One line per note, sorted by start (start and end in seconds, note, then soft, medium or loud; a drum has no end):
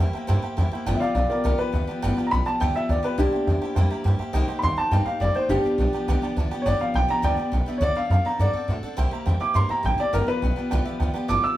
0.00 0.12 E2 medium
0.00 0.14 G3 medium
0.00 0.14 A#3 medium
0.00 0.14 E4 medium
0.00 0.12 G4 medium
0.00 0.09 G5 loud
0.13 0.28 A#3 medium
0.13 0.28 E4 medium
0.13 0.28 G4 medium
0.13 0.22 C5 medium
0.13 0.23 E5 medium
0.13 0.23 G5 medium
0.13 muted upright bass stroke medium
0.27 0.42 G2 medium
0.27 0.42 C3 medium
0.27 0.43 G3 medium
0.27 0.43 A#3 medium
0.27 0.43 E4 loud
0.27 0.41 G4 medium
0.27 0.37 C5 loud
0.27 0.37 E5 medium
0.27 0.37 G5 loud
0.42 0.57 A#3 medium
0.42 0.58 E4 medium
0.42 0.57 G4 medium
0.42 0.51 C5 medium
0.42 0.52 E5 medium
0.42 0.52 G5 loud
0.42 muted upright bass stroke medium
0.57 0.71 E2 loud
0.57 0.72 G3 medium
0.57 0.72 A#3 medium
0.57 0.72 E4 medium
0.57 0.70 G4 medium
0.57 0.66 C5 medium
0.57 0.66 E5 medium
0.57 0.66 G5 loud
0.71 0.87 A#3 medium
0.71 0.87 E4 medium
0.71 0.86 G4 medium
0.71 0.81 C5 medium
0.71 0.81 E5 medium
0.71 0.81 G5 medium
0.71 muted upright bass stroke medium
0.86 1.00 G1 medium
0.86 1.01 G2 medium
0.86 1.01 D3 loud
0.86 1.01 F3 medium
0.86 1.02 B3 medium
0.86 1.01 F4 loud
0.86 0.99 G4 loud
0.86 0.95 B4 loud
0.86 0.95 D5 loud
0.86 0.95 G5 loud
0.96 1.13 D5 medium
0.96 0.98 E5 medium
1.00 1.14 F3 soft
1.00 1.15 B3 soft
1.00 1.16 F4 medium
1.00 1.15 G4 medium
1.00 1.10 B4 medium
1.00 1.10 D5 medium
1.00 1.13 F5 medium
1.00 1.10 G5 medium
1.00 muted upright bass stroke medium
1.15 1.28 B1 medium
1.15 1.30 F3 medium
1.15 1.30 B3 medium
1.15 1.30 F4 medium
1.15 1.29 G4 medium
1.15 1.24 B4 medium
1.15 1.28 D5 medium
1.15 1.25 D5 medium
1.15 1.29 F5 medium
1.15 1.25 G5 medium
1.30 1.44 F3 soft
1.30 1.44 B3 medium
1.30 1.44 F4 medium
1.30 1.44 G4 medium
1.30 1.43 A#4 medium
1.30 1.38 B4 medium
1.30 1.44 D5 medium
1.30 1.39 D5 medium
1.30 1.39 G5 medium
1.30 muted upright bass stroke medium
1.44 1.58 C2 medium
1.44 1.59 G2 medium
1.44 1.59 D3 medium
1.44 1.59 F3 medium
1.44 1.59 B3 medium
1.44 1.58 F4 medium
1.44 1.57 G4 medium
1.44 1.58 A#4 medium
1.44 1.53 B4 loud
1.44 1.53 D5 medium
1.44 1.59 D5 medium
1.44 1.53 G5 loud
1.58 1.71 F3 soft
1.58 1.72 B3 soft
1.58 1.74 F4 soft
1.58 1.73 G4 medium
1.58 1.68 B4 medium
1.58 2.15 B4 loud
1.58 1.68 D5 medium
1.58 1.68 G5 medium
1.58 muted upright bass stroke medium
1.73 1.87 D2 medium
1.73 1.88 F3 medium
1.73 1.88 B3 medium
1.73 1.88 F4 medium
1.73 1.86 G4 medium
1.73 1.82 B4 medium
1.73 1.82 D5 medium
1.73 1.82 G5 medium
1.87 2.02 F3 soft
1.87 2.03 B3 medium
1.87 2.03 F4 medium
1.87 2.02 G4 medium
1.87 1.97 B4 medium
1.87 1.97 D5 medium
1.87 1.97 G5 medium
1.87 muted upright bass stroke medium
2.02 2.16 G1 medium
2.02 2.17 G2 medium
2.02 2.17 D3 medium
2.02 2.17 F3 loud
2.02 2.18 B3 loud
2.02 2.17 F4 loud
2.02 2.16 G4 loud
2.02 2.11 B4 loud
2.02 2.11 D5 loud
2.02 2.11 G5 loud
2.17 2.30 F3 medium
2.17 2.31 B3 medium
2.17 2.32 F4 medium
2.17 2.31 G4 medium
2.17 2.25 B4 medium
2.17 2.26 D5 medium
2.17 2.26 G5 loud
2.17 muted upright bass stroke medium
2.27 2.29 A#5 medium
2.31 2.45 B1 medium
2.31 2.46 F3 medium
2.31 2.46 B3 medium
2.31 2.45 F4 medium
2.31 2.44 G4 medium
2.31 2.40 B4 medium
2.31 2.40 D5 medium
2.31 2.40 G5 medium
2.31 2.45 B5 loud
2.45 2.61 F3 soft
2.45 2.61 B3 soft
2.45 2.61 F4 medium
2.45 2.60 G4 medium
2.45 2.54 B4 medium
2.45 2.55 D5 medium
2.45 2.55 G5 medium
2.45 2.60 A5 medium
2.45 muted upright bass stroke medium
2.60 2.74 D2 medium
2.60 2.75 G2 medium
2.60 2.75 D3 medium
2.60 2.76 F3 medium
2.60 2.76 B3 medium
2.60 2.74 F4 medium
2.60 2.73 G4 medium
2.60 2.69 B4 medium
2.60 2.69 D5 medium
2.60 2.69 E5 loud
2.60 2.75 G5 loud
2.74 2.88 F3 soft
2.74 2.89 B3 soft
2.74 2.90 F4 medium
2.74 2.89 G4 soft
2.74 2.84 B4 medium
2.74 2.84 D5 medium
2.74 2.89 E5 medium
2.74 2.84 G5 medium
2.74 muted upright bass stroke medium
2.89 3.02 D2 medium
2.89 3.04 F3 medium
2.89 3.04 B3 medium
2.89 3.03 F4 medium
2.89 3.02 G4 medium
2.89 2.98 B4 medium
2.89 2.98 D5 medium
2.89 3.04 D5 medium
2.89 2.98 G5 medium
3.03 3.18 F3 soft
3.03 3.19 B3 medium
3.03 3.18 F4 medium
3.03 3.18 G4 medium
3.03 3.12 B4 medium
3.03 3.18 B4 medium
3.03 3.13 D5 medium
3.03 3.13 G5 medium
3.03 muted upright bass stroke medium
3.18 3.31 C2 medium
3.18 3.32 C3 medium
3.18 3.33 G3 medium
3.18 3.33 A#3 medium
3.18 4.01 D4 medium
3.18 3.33 E4 medium
3.18 4.03 G4 medium
3.18 3.31 G4 medium
3.18 3.27 C5 medium
3.18 3.27 E5 medium
3.18 3.27 G5 loud
3.32 3.47 A#3 soft
3.32 3.48 E4 soft
3.32 3.47 G4 medium
3.32 3.41 C5 medium
3.32 3.41 E5 medium
3.32 3.42 G5 medium
3.32 muted upright bass stroke medium
3.46 3.60 E2 medium
3.46 3.62 G3 medium
3.46 3.62 A#3 medium
3.46 3.62 E4 medium
3.46 3.55 C5 medium
3.46 3.56 E5 medium
3.46 3.56 G5 medium
3.51 3.60 G4 medium
3.61 3.77 E4 medium
3.61 3.76 G4 medium
3.61 3.70 C5 medium
3.61 3.70 E5 medium
3.61 3.71 G5 loud
3.61 muted upright bass stroke medium
3.65 3.76 A#3 medium
3.75 3.89 F2 medium
3.75 3.91 C3 medium
3.75 3.91 G3 medium
3.75 3.91 A#3 loud
3.75 3.91 E4 medium
3.75 3.89 G4 medium
3.75 3.84 C5 loud
3.75 3.85 E5 loud
3.75 3.85 G5 loud
3.90 4.05 A#3 soft
3.90 4.06 E4 medium
3.90 4.05 G4 medium
3.90 3.99 C5 medium
3.90 3.99 E5 medium
3.90 4.00 A#5 medium
3.90 muted upright bass stroke medium
4.04 4.18 G2 medium
4.04 4.19 G3 medium
4.04 4.20 A#3 medium
4.04 4.20 E4 medium
4.04 4.18 G4 medium
4.04 4.14 C5 medium
4.04 4.14 E5 medium
4.04 4.14 G5 loud
4.19 4.33 A#3 medium
4.19 4.35 E4 medium
4.19 4.34 G4 medium
4.19 4.28 C5 medium
4.19 4.28 E5 medium
4.19 4.28 G5 medium
4.19 muted upright bass stroke medium
4.33 4.47 C2 medium
4.33 4.48 C3 medium
4.33 4.48 G3 medium
4.33 4.49 A#3 loud
4.33 4.49 D#4 medium
4.33 4.47 G4 loud
4.33 4.42 C5 loud
4.33 4.43 D#5 loud
4.33 4.43 G5 loud
4.48 4.63 A#3 soft
4.48 4.63 D#4 medium
4.48 4.63 G4 medium
4.48 4.57 C5 medium
4.48 4.57 D#5 medium
4.48 4.58 G5 loud
4.48 muted upright bass stroke medium
4.59 4.77 G3 medium
4.59 4.61 B5 medium
4.63 4.76 D#2 medium
4.63 4.78 A#3 medium
4.63 4.78 D#4 medium
4.63 4.76 G4 medium
4.63 4.72 C5 medium
4.63 4.72 D#5 medium
4.63 4.72 G5 medium
4.63 4.77 C6 loud
4.77 4.92 A#3 soft
4.77 4.92 D#4 medium
4.77 4.92 G4 medium
4.77 4.86 C5 medium
4.77 4.86 D#5 medium
4.77 4.87 G5 medium
4.77 4.92 A5 medium
4.77 muted upright bass stroke medium
4.91 5.05 G2 medium
4.91 5.06 C3 medium
4.91 5.07 G3 medium
4.91 5.07 A#3 medium
4.91 5.07 D#4 medium
4.91 5.05 G4 medium
4.91 5.01 C5 medium
4.91 5.01 D#5 medium
4.91 5.01 F5 loud
4.91 5.06 G5 medium
5.06 5.21 A#3 soft
5.06 5.21 D#4 soft
5.06 5.21 G4 medium
5.06 5.15 C5 medium
5.06 5.15 D#5 medium
5.06 5.20 F5 medium
5.06 5.16 A5 medium
5.06 muted upright bass stroke medium
5.20 5.34 F#1 medium
5.20 5.35 G3 medium
5.20 5.36 A#3 medium
5.20 5.35 D#4 medium
5.20 5.33 G4 medium
5.20 5.29 C5 medium
5.20 5.35 D5 loud
5.20 5.30 D#5 medium
5.20 5.30 G5 medium
5.35 5.50 A#3 soft
5.35 5.50 D#4 soft
5.35 5.50 G4 medium
5.35 5.44 C5 medium
5.35 5.49 C5 medium
5.35 5.44 D#5 medium
5.35 5.44 G5 medium
5.35 muted upright bass stroke medium
5.49 5.62 G1 medium
5.49 5.64 G2 medium
5.49 5.64 D3 medium
5.49 5.65 F3 medium
5.49 5.65 B3 medium
5.49 6.33 D4 medium
5.49 5.64 D4 medium
5.49 6.34 G4 loud
5.49 5.62 G4 medium
5.49 5.59 B4 medium
5.49 5.59 D5 medium
5.49 5.59 G5 loud
5.63 5.77 F3 soft
5.63 5.78 B3 soft
5.63 5.79 D4 medium
5.63 5.78 G4 medium
5.63 5.73 B4 medium
5.63 5.73 D5 medium
5.63 5.74 F5 medium
5.63 muted upright bass stroke medium
5.78 5.92 B1 medium
5.78 5.93 F3 medium
5.78 5.94 B3 medium
5.78 5.93 D4 medium
5.78 5.92 G4 medium
5.78 5.88 B4 medium
5.78 5.88 D5 medium
5.78 5.88 G5 medium
5.93 6.08 F3 medium
5.93 6.09 B3 medium
5.93 6.08 D4 medium
5.93 6.08 G4 medium
5.93 6.02 B4 medium
5.93 6.02 D5 medium
5.93 6.03 G5 loud
5.93 muted upright bass stroke medium
6.08 6.21 C2 medium
6.08 6.23 G2 medium
6.08 6.23 D3 medium
6.08 6.23 F3 medium
6.08 6.23 B3 loud
6.08 6.22 D4 medium
6.08 6.21 G4 loud
6.08 6.16 B4 loud
6.08 6.17 D5 loud
6.08 6.17 G5 loud
6.22 6.35 F3 medium
6.22 6.37 B3 medium
6.22 6.37 D4 medium
6.22 6.37 G4 medium
6.22 6.31 B4 medium
6.22 6.31 D5 medium
6.22 6.32 G5 loud
6.22 muted upright bass stroke medium
6.36 6.50 D2 medium
6.36 6.51 F3 medium
6.36 6.52 B3 medium
6.36 6.52 D4 medium
6.36 6.50 G4 medium
6.36 6.45 B4 medium
6.36 6.46 D5 medium
6.36 6.46 A5 loud
6.50 6.66 B3 medium
6.50 6.67 D4 medium
6.50 6.66 G4 medium
6.50 6.60 B4 medium
6.50 6.60 D5 medium
6.50 6.60 G5 loud
6.50 muted upright bass stroke medium
6.55 6.65 F3 medium
6.62 6.79 G1 medium
6.62 6.74 B4 medium
6.62 6.64 C#5 medium
6.62 6.75 D5 medium
6.66 6.80 G2 medium
6.66 6.81 D3 medium
6.66 6.81 F3 medium
6.66 6.81 B3 medium
6.66 6.80 D4 medium
6.66 6.78 G4 medium
6.66 6.80 D5 loud
6.66 6.75 G5 loud
6.80 6.93 F3 soft
6.80 6.94 B3 soft
6.80 6.95 D4 soft
6.80 6.94 G4 medium
6.80 6.89 B4 medium
6.80 6.89 D5 medium
6.80 6.95 F5 loud
6.80 6.89 G5 medium
6.80 muted upright bass stroke medium
6.94 7.08 B1 medium
6.94 7.09 F3 medium
6.94 7.09 B3 medium
6.94 7.09 D4 medium
6.94 7.07 G4 medium
6.94 7.03 B4 medium
6.94 7.03 D5 medium
6.94 7.04 G5 medium
6.94 7.09 G5 loud
7.08 7.22 F3 soft
7.08 7.23 B3 soft
7.08 7.23 D4 medium
7.08 7.23 G4 medium
7.08 7.18 B4 medium
7.08 7.18 D5 medium
7.08 7.19 G5 medium
7.08 7.24 A#5 medium
7.08 muted upright bass stroke medium
7.22 7.37 D2 medium
7.22 7.38 G2 medium
7.22 7.38 D3 medium
7.22 7.38 F3 medium
7.22 7.38 B3 medium
7.22 7.37 D4 medium
7.22 7.36 G4 medium
7.22 7.32 B4 medium
7.22 7.51 D5 medium
7.22 7.33 D5 medium
7.22 7.52 G5 loud
7.22 7.33 G5 loud
7.37 7.50 F3 soft
7.37 7.52 B3 soft
7.37 7.53 D4 medium
7.37 7.52 G4 medium
7.37 7.47 B4 medium
7.37 7.47 D5 medium
7.37 7.47 G5 medium
7.37 muted upright bass stroke medium
7.52 7.66 B1 medium
7.52 7.67 F3 medium
7.52 7.67 B3 medium
7.52 7.66 D4 medium
7.52 7.65 G4 medium
7.52 7.61 B4 medium
7.52 7.62 D5 medium
7.52 7.62 G5 medium
7.66 7.81 F3 medium
7.66 7.81 B3 medium
7.66 7.81 D4 medium
7.66 7.81 G4 medium
7.66 7.76 B4 medium
7.66 7.76 D5 medium
7.66 7.76 E5 loud
7.66 muted upright bass stroke medium
7.78 7.94 D2 medium
7.78 7.96 D3 medium
7.78 7.96 F#3 medium
7.78 7.90 A4 medium
7.78 7.80 C#5 medium
7.82 7.96 C4 medium
7.82 7.96 D4 medium
7.82 7.94 A4 medium
7.82 7.91 D5 medium
7.82 7.96 D5 loud
7.82 7.91 F#5 loud
7.95 8.11 C4 soft
7.95 8.11 D4 soft
7.95 8.05 A4 medium
7.95 8.10 A4 medium
7.95 8.05 D5 medium
7.95 8.05 E5 medium
7.95 8.10 F5 medium
7.95 muted upright bass stroke medium
8.10 8.23 F#2 medium
8.10 8.25 F#3 medium
8.10 8.26 C4 medium
8.10 8.25 D4 medium
8.10 8.20 A4 medium
8.10 8.20 D5 medium
8.10 8.25 F5 loud
8.10 8.20 A5 medium
8.14 8.24 A4 medium
8.24 8.40 D4 soft
8.24 8.34 A4 medium
8.24 8.40 A4 medium
8.24 8.34 D5 medium
8.24 8.34 F#5 medium
8.24 8.40 A#5 medium
8.24 muted upright bass stroke medium
8.29 8.39 C4 soft
8.39 8.53 G2 medium
8.39 8.54 D3 medium
8.39 8.55 F#3 medium
8.39 8.55 C4 medium
8.39 8.54 D4 medium
8.39 8.48 A4 medium
8.39 8.52 A4 medium
8.39 8.49 D5 medium
8.39 8.68 D5 medium
8.39 8.49 F#5 loud
8.53 8.68 C4 soft
8.53 8.69 D4 soft
8.53 8.68 A4 medium
8.53 8.63 A4 medium
8.53 8.63 D5 medium
8.53 8.63 F#5 medium
8.53 muted upright bass stroke medium
8.68 8.82 A2 medium
8.68 8.83 F#3 medium
8.68 8.84 C4 medium
8.68 8.83 D4 medium
8.68 8.77 A4 medium
8.68 8.82 A4 medium
8.68 8.77 D5 medium
8.68 8.78 F#5 medium
8.83 8.97 C4 medium
8.83 8.98 D4 medium
8.83 8.98 A4 medium
8.83 8.92 A4 medium
8.83 8.92 D5 medium
8.83 8.92 F#5 loud
8.83 muted upright bass stroke medium
8.97 9.11 C2 medium
8.97 9.12 C3 medium
8.97 9.12 G3 medium
8.97 9.12 A#3 medium
8.97 9.12 E4 loud
8.97 9.10 G4 loud
8.97 9.06 C5 loud
8.97 9.06 E5 loud
8.97 9.07 G5 loud
9.11 9.26 A#3 medium
9.11 9.27 E4 medium
9.11 9.26 G4 medium
9.11 9.21 C5 medium
9.11 9.21 E5 medium
9.11 9.21 A#5 loud
9.11 muted upright bass stroke medium
9.26 9.40 E2 medium
9.26 9.41 G3 medium
9.26 9.41 A#3 medium
9.26 9.40 E4 medium
9.26 9.39 G4 medium
9.26 9.35 C5 medium
9.26 9.35 E5 medium
9.26 9.35 G5 loud
9.40 9.54 A#3 soft
9.40 9.55 E4 medium
9.40 9.55 G4 medium
9.40 9.49 C5 medium
9.40 9.49 E5 medium
9.40 9.50 G5 medium
9.40 9.55 D6 medium
9.40 muted upright bass stroke medium
9.54 9.68 G2 medium
9.54 9.69 C3 medium
9.54 9.70 G3 medium
9.54 9.70 A#3 medium
9.54 9.70 E4 medium
9.54 9.68 G4 medium
9.54 9.63 C5 medium
9.54 9.64 E5 medium
9.54 9.64 A#5 loud
9.54 9.70 C6 medium
9.69 9.83 A#3 soft
9.69 9.85 E4 medium
9.69 9.84 G4 medium
9.69 9.78 C5 medium
9.69 9.78 E5 medium
9.69 9.78 G5 medium
9.69 9.84 A#5 medium
9.69 muted upright bass stroke medium
9.83 9.98 A1 medium
9.83 9.98 G3 medium
9.83 9.99 A#3 medium
9.83 9.99 E4 medium
9.83 9.97 G4 medium
9.83 9.93 C5 medium
9.83 9.93 E5 medium
9.83 9.99 G5 loud
9.83 9.93 A5 medium
9.98 10.14 A#3 soft
9.98 10.14 E4 medium
9.98 10.13 G4 medium
9.98 10.07 C5 medium
9.98 10.14 D5 loud
9.98 10.07 E5 medium
9.98 10.08 A5 medium
9.98 muted upright bass stroke medium
10.13 10.26 G1 medium
10.13 10.28 G2 medium
10.13 10.28 D3 medium
10.13 10.28 F3 medium
10.13 10.28 B3 medium
10.13 10.27 F4 medium
10.13 10.25 G4 medium
10.13 10.28 A#4 loud
10.13 10.22 B4 medium
10.13 10.22 D5 medium
10.13 10.22 G5 loud
10.27 10.41 F3 soft
10.27 10.42 B3 soft
10.27 10.43 F4 medium
10.27 10.42 G4 medium
10.27 11.12 B4 loud
10.27 10.37 D5 medium
10.27 10.37 F5 medium
10.27 muted upright bass stroke medium
10.41 10.56 B1 medium
10.41 10.57 F3 medium
10.41 10.57 B3 medium
10.41 10.56 F4 medium
10.41 10.51 B4 medium
10.41 10.51 D5 medium
10.41 10.51 G5 medium
10.46 10.55 G4 medium
10.56 10.71 F3 soft
10.56 10.71 B3 medium
10.56 10.72 F4 medium
10.56 10.71 G4 medium
10.56 10.65 B4 medium
10.56 10.66 D5 medium
10.56 10.66 G5 medium
10.56 muted upright bass stroke medium
10.70 10.85 C2 loud
10.70 10.86 G2 medium
10.70 10.86 D3 medium
10.70 10.86 F3 medium
10.70 10.87 B3 loud
10.70 10.86 F4 medium
10.70 10.84 G4 loud
10.70 10.79 B4 loud
10.70 10.80 D5 loud
10.70 10.80 G5 loud
10.84 11.00 B3 medium
10.84 11.01 F4 medium
10.84 11.00 G4 medium
10.84 10.94 B4 medium
10.84 10.94 D5 medium
10.84 10.94 E5 loud
10.84 muted upright bass stroke medium
10.89 10.99 F3 soft
10.99 11.14 D2 medium
10.99 11.15 F3 medium
10.99 11.15 B3 medium
10.99 11.14 F4 medium
10.99 11.08 B4 medium
10.99 11.09 D5 medium
10.99 11.09 G5 loud
11.03 11.12 G4 medium
11.14 11.28 F3 medium
11.14 11.29 B3 medium
11.14 11.29 F4 medium
11.14 11.29 G4 medium
11.14 11.23 B4 medium
11.14 11.23 D5 medium
11.14 11.23 G5 loud
11.14 muted upright bass stroke medium
11.28 11.42 G1 medium
11.28 11.43 G2 medium
11.28 11.44 D3 medium
11.28 11.44 F3 medium
11.28 11.44 B3 medium
11.28 11.44 F4 medium
11.28 11.43 G4 medium
11.28 11.37 B4 medium
11.28 11.38 D5 medium
11.28 11.38 A5 loud
11.28 11.43 D6 loud
11.43 11.57 B3 soft
11.43 11.57 F4 medium
11.43 11.57 G4 medium
11.43 11.52 B4 medium
11.43 11.52 D5 medium
11.43 11.53 E5 medium
11.43 11.57 E6 medium
11.43 muted upright bass stroke medium
11.47 11.57 F3 soft